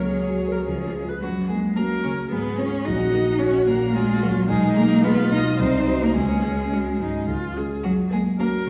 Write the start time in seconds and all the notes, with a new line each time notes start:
Already playing: C#2 C#3 F#3 A#3 C#5
0.09 C#4 G#4
0.29 F#4
0.48 A#4
0.65 C#2 F3 G#4
0.86 G#3
1.04 C#4 F4
1.08 B4
1.22 F#2 F#3 F#4
1.48 G#3 A#3 G#4
1.76 A#3 C#4 F#4 A#4
2.03 C#3 C#4 C#5
2.30 G#2 B3 G#4 B4
2.58 C#4 F4 C#5
2.85 A#1 D#4 F#4 D#5
3.14 A#3
3.39 C#4 F#4 C#5
3.66 A#2 A#3 A#4
3.93 G#3 C#4 F4 F#4 G#4
4.22 F#3 A#3 F#4
4.48 B1 G#3 D#4 G#4
4.76 G#3 A#3 A#4
5.04 B3 D#4 F4 G#4 B4
5.31 B2 D#4 D#5
5.59 C2 C4 D#4 C5
5.87 D#4 F#4
6.02 A#3 A#4
6.15 C#2 G#3 C#4 G#4
6.44 G#3
6.72 C#4 F#4
7.00 G#2 D#4
7.27 C#2 F4
7.55 C#4 F4 G#4
7.83 F#2 F#3 F#4
8.11 G#3 A#3 G#4
8.38 A#3 C#4 F#4 A#4
8.66 C#3